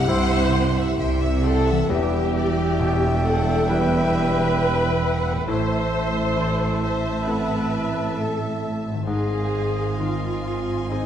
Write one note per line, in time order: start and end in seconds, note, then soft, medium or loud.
0.00 1.85 C2 medium
0.00 0.63 G2 medium
0.00 1.84 C3 medium
0.00 1.73 G3 medium
0.00 1.74 G3 medium
0.00 1.73 E4 medium
0.00 1.79 E4 medium
0.00 0.11 G4 medium
0.00 1.91 C5 medium
0.00 0.99 F#5 loud
0.07 0.88 C2 loud
0.07 0.89 C3 loud
0.07 1.85 G3 medium
0.07 1.85 E4 medium
0.07 0.98 C5 loud
0.07 0.99 C5 loud
0.07 1.85 C5 medium
0.07 0.43 E5 medium
0.07 0.31 G5 medium
0.07 0.31 C6 medium
0.07 0.52 C6 medium
0.32 0.54 E5 medium
0.32 0.55 E6 medium
0.55 0.77 G5 medium
0.55 0.77 C6 medium
0.77 0.99 E5 medium
0.77 0.99 E6 medium
0.98 1.78 C2 medium
0.98 1.78 C3 medium
0.98 1.44 E5 medium
0.98 1.20 G5 medium
0.98 1.20 C6 medium
1.21 1.44 E5 medium
1.21 1.44 E6 medium
1.42 1.85 A4 loud
1.42 1.92 A4 loud
1.42 1.90 F#5 medium
1.42 1.67 G5 medium
1.42 1.67 C6 medium
1.66 1.87 E5 medium
1.66 1.89 E6 medium
1.71 5.43 E3 medium
1.76 5.45 G3 medium
1.80 5.38 E4 medium
1.85 5.50 B4 medium
1.85 5.44 E5 medium
1.85 5.44 G5 medium
1.89 5.44 E1 medium
1.89 5.44 E2 medium
1.89 5.45 E2 medium
1.89 5.45 G3 medium
1.89 5.45 E4 medium
1.89 3.25 G4 loud
1.89 3.25 G4 medium
1.89 2.35 E5 medium
1.89 5.45 G5 medium
2.36 2.80 D5 medium
2.80 4.23 B2 medium
2.80 3.26 E5 medium
3.24 3.69 A4 loud
3.24 3.71 A4 medium
3.24 3.70 F#5 medium
3.69 5.44 G3 soft
3.69 5.44 E4 medium
3.69 5.48 B4 loud
3.69 5.45 B4 medium
3.69 4.60 E5 medium
4.60 5.04 G5 medium
5.04 5.48 F#5 medium
5.30 9.01 A2 medium
5.35 9.04 A3 medium
5.40 9.06 E4 soft
5.44 9.03 A2 medium
5.44 8.90 E4 medium
5.44 9.08 A4 medium
5.44 6.78 C5 loud
5.48 9.03 A1 medium
5.48 9.03 A2 medium
5.48 8.90 A3 medium
5.48 6.79 C5 loud
5.48 9.03 E5 medium
5.48 6.36 E5 medium
5.48 8.90 E5 medium
5.48 9.03 A5 medium
5.48 8.75 A5 medium
6.37 7.80 E3 soft
6.37 6.82 D5 medium
6.82 7.26 C5 loud
6.82 7.29 C5 medium
6.82 7.27 E5 medium
7.25 9.03 C4 soft
7.25 9.03 E4 soft
7.25 9.03 A4 soft
7.25 8.15 B4 medium
7.25 7.89 B4 medium
7.25 7.71 F#5 medium
7.71 9.07 E5 medium
8.17 8.62 A4 medium
8.17 8.59 A4 medium
8.89 11.06 G#2 soft
8.94 11.06 D#3 soft
8.98 11.06 G#4 soft
9.03 9.94 G#4 medium
9.03 11.06 C5 soft
9.07 11.06 G#1 medium
9.07 11.06 G#2 medium
9.07 11.06 D#3 medium
9.07 11.06 C4 medium
9.07 9.95 G#4 medium
9.07 10.86 D#5 medium
9.07 10.86 F5 medium
9.07 11.06 G#5 medium
9.07 10.86 C6 medium
9.07 11.06 C6 medium
9.99 11.06 D#3 soft
9.99 10.93 F4 medium
9.99 10.90 F4 medium
10.90 11.06 C4 soft
10.90 11.06 D#4 medium
10.90 11.06 D#4 soft
10.90 11.06 G#4 soft
10.90 11.06 C5 soft
10.90 11.06 D#5 medium
10.90 11.06 C6 soft